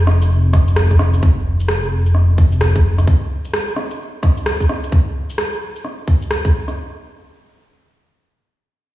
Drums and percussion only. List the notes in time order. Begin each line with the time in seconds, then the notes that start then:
0.07 cross-stick
0.22 shaker
0.53 kick, cross-stick, shaker
0.68 shaker
0.76 cross-stick
0.91 kick, shaker
0.99 cross-stick
1.13 shaker
1.23 kick
1.60 shaker
1.68 cross-stick
1.83 shaker
2.06 shaker
2.15 cross-stick
2.38 kick, shaker
2.52 shaker
2.61 cross-stick
2.75 kick, shaker
2.98 cross-stick, shaker
3.07 kick
3.45 shaker
3.54 cross-stick
3.68 shaker
3.76 cross-stick
3.91 shaker
4.23 kick, cross-stick, shaker
4.37 shaker
4.46 cross-stick
4.61 kick, shaker
4.69 cross-stick
4.84 shaker
4.92 kick
5.30 shaker
5.38 cross-stick
5.53 shaker
5.76 shaker
5.85 cross-stick
6.08 kick, shaker
6.22 shaker
6.31 cross-stick
6.45 kick, shaker
6.68 cross-stick, shaker